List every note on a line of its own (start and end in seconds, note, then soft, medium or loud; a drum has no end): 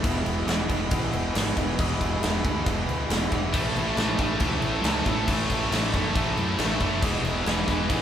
0.00 0.47 E3 loud
0.00 6.99 E4 medium
0.00 3.50 B4 medium
0.00 3.50 G#5 medium
0.00 crash medium
0.04 0.22 E1 medium
0.04 0.47 E2 loud
0.04 0.47 B2 loud
0.04 0.48 G#3 loud
0.04 0.48 B3 loud
0.04 0.49 E4 loud
0.04 kick loud
0.25 0.43 E1 loud
0.25 crash medium
0.47 0.65 E1 loud
0.47 0.69 E2 medium
0.47 0.69 B2 loud
0.47 0.69 E3 medium
0.47 0.69 G#3 medium
0.47 0.70 B3 loud
0.47 0.70 E4 medium
0.47 snare loud
0.47 crash medium
0.69 0.88 E1 medium
0.69 0.90 E2 medium
0.69 0.90 B2 medium
0.69 0.90 E3 loud
0.69 0.90 G#3 loud
0.69 0.91 B3 loud
0.69 0.92 E4 loud
0.69 kick medium
0.69 snare soft
0.69 crash medium
0.91 1.09 A1 loud
0.91 1.34 E2 loud
0.91 1.34 B2 loud
0.91 1.34 E3 loud
0.91 1.34 G#3 loud
0.91 1.35 B3 loud
0.91 1.36 E4 loud
0.91 kick loud
0.91 crash medium
1.13 1.31 E1 medium
1.13 crash medium
1.35 1.53 G#1 medium
1.35 1.56 E2 loud
1.35 1.56 B2 medium
1.35 1.56 E3 medium
1.35 1.56 G#3 medium
1.35 1.56 B3 medium
1.35 1.58 E4 loud
1.35 snare loud
1.35 crash loud
1.57 1.75 E1 loud
1.57 1.78 E2 medium
1.57 1.78 B2 medium
1.57 1.78 E3 medium
1.57 1.78 G#3 medium
1.57 1.78 B3 loud
1.57 1.79 E4 medium
1.57 kick medium
1.57 crash medium
1.78 1.97 E1 loud
1.78 2.21 E2 medium
1.78 2.22 B2 medium
1.78 2.21 E3 loud
1.78 2.21 G#3 loud
1.78 2.22 B3 loud
1.78 2.23 E4 loud
1.78 kick loud
1.78 crash medium
2.01 2.19 E1 loud
2.01 kick medium
2.01 crash medium
2.21 2.41 E1 medium
2.21 2.43 E2 medium
2.21 2.43 B2 medium
2.21 2.43 E3 medium
2.21 2.43 G#3 loud
2.21 2.44 B3 medium
2.21 2.45 E4 medium
2.21 snare loud
2.21 crash medium
2.44 2.62 D2 medium
2.44 2.65 E2 medium
2.44 2.66 B2 medium
2.44 2.65 E3 medium
2.44 2.65 G#3 loud
2.44 2.65 B3 medium
2.44 2.67 E4 loud
2.44 kick loud
2.44 crash medium
2.66 2.84 E1 medium
2.66 3.09 E2 medium
2.66 3.09 B2 medium
2.66 3.09 E3 loud
2.66 3.08 G#3 loud
2.66 3.09 B3 loud
2.66 3.10 E4 loud
2.66 kick loud
2.66 crash medium
2.88 3.06 D2 medium
2.88 crash medium
3.09 3.28 E1 medium
3.09 3.30 E2 medium
3.09 3.31 B2 medium
3.09 3.31 E3 medium
3.09 3.31 G#3 medium
3.09 3.31 B3 medium
3.09 3.33 E4 medium
3.09 snare loud
3.09 crash medium
3.31 3.50 E1 medium
3.31 3.52 E2 medium
3.31 3.52 B2 medium
3.31 3.53 E3 medium
3.31 3.52 G#3 medium
3.31 3.53 B3 medium
3.31 3.55 E4 medium
3.31 kick medium
3.31 crash medium
3.53 3.72 A1 loud
3.53 3.96 A2 loud
3.53 3.97 E3 loud
3.53 3.97 A3 loud
3.53 3.98 C#4 loud
3.53 3.98 E4 loud
3.53 7.00 C#5 medium
3.53 6.99 A5 medium
3.53 kick loud
3.53 crash medium
3.76 3.94 A1 loud
3.76 crash medium
3.96 4.15 A1 medium
3.96 4.18 A2 medium
3.96 4.19 E3 loud
3.96 4.19 A3 medium
3.96 4.20 C#4 loud
3.96 4.20 E4 loud
3.96 snare loud
3.96 crash medium
4.18 4.37 A1 medium
4.18 4.40 A2 medium
4.18 4.41 E3 medium
4.18 4.41 A3 loud
4.18 4.41 C#4 loud
4.18 4.43 E4 loud
4.18 kick loud
4.18 snare soft
4.18 crash medium
4.40 4.59 D2 loud
4.40 4.82 A2 loud
4.40 4.84 E3 loud
4.40 4.84 A3 loud
4.40 4.84 C#4 loud
4.40 4.85 E4 loud
4.40 kick loud
4.40 crash medium
4.62 4.80 A1 medium
4.62 crash medium
4.84 5.02 C#2 medium
4.84 5.05 A2 medium
4.84 5.07 E3 medium
4.84 5.07 A3 medium
4.84 5.07 C#4 medium
4.84 5.08 E4 medium
4.84 snare loud
4.84 crash medium
5.06 5.24 A1 loud
5.06 5.27 A2 medium
5.06 5.29 E3 medium
5.06 5.28 A3 medium
5.06 5.29 C#4 loud
5.06 5.30 E4 medium
5.06 kick loud
5.06 crash medium
5.28 5.46 A1 loud
5.28 5.70 A2 loud
5.28 5.71 E3 loud
5.28 5.71 A3 loud
5.28 5.72 C#4 loud
5.28 5.73 E4 loud
5.28 kick loud
5.28 crash loud
5.50 5.68 A1 loud
5.50 kick medium
5.50 crash medium
5.71 5.90 A1 medium
5.71 5.92 A2 medium
5.71 5.93 E3 medium
5.71 5.93 A3 medium
5.71 5.94 C#4 loud
5.71 5.95 E4 medium
5.71 snare loud
5.71 crash medium
5.93 6.12 F#1 medium
5.93 6.13 A2 loud
5.93 6.15 E3 loud
5.93 6.14 A3 loud
5.93 6.15 C#4 loud
5.93 6.16 E4 loud
5.93 kick loud
5.93 crash medium
6.14 6.33 A1 loud
6.14 6.57 A2 loud
6.14 6.59 E3 loud
6.14 6.59 A3 loud
6.14 6.59 C#4 loud
6.14 6.61 E4 loud
6.14 kick loud
6.14 crash medium
6.37 6.55 F#2 medium
6.37 crash medium
6.59 6.77 A1 medium
6.59 6.79 A2 medium
6.59 6.81 E3 medium
6.59 6.80 A3 medium
6.59 6.81 C#4 medium
6.59 6.82 E4 loud
6.59 snare loud
6.59 crash medium
6.80 7.02 F#1 medium
6.80 7.01 A2 medium
6.80 7.02 E3 medium
6.80 7.02 A3 medium
6.80 7.02 C#4 medium
6.80 7.03 E4 loud
6.80 kick medium
6.80 crash medium
7.01 7.21 E1 loud
7.01 7.45 E2 loud
7.01 7.45 B2 loud
7.01 7.45 E3 loud
7.01 7.46 G#3 loud
7.01 7.46 B3 loud
7.01 8.02 E4 medium
7.01 7.47 E4 loud
7.01 8.02 B4 medium
7.01 8.02 G#5 medium
7.01 kick loud
7.01 crash medium
7.23 7.42 E1 loud
7.23 crash medium
7.45 7.64 E1 medium
7.45 7.68 E2 medium
7.45 7.67 B2 medium
7.45 7.67 E3 medium
7.45 7.68 G#3 loud
7.45 7.68 B3 medium
7.45 7.68 E4 loud
7.45 snare loud
7.45 crash medium
7.67 7.86 E1 medium
7.67 7.90 E2 medium
7.67 7.89 B2 medium
7.67 7.88 E3 medium
7.67 7.89 G#3 loud
7.67 7.89 B3 medium
7.67 7.89 E4 loud
7.67 kick medium
7.67 snare soft
7.67 crash medium
7.88 8.02 A1 loud
7.88 8.02 E2 loud
7.88 8.02 B2 loud
7.88 8.02 E3 loud
7.88 8.02 G#3 loud
7.88 8.02 B3 loud
7.88 8.02 E4 loud
7.88 kick loud
7.88 crash medium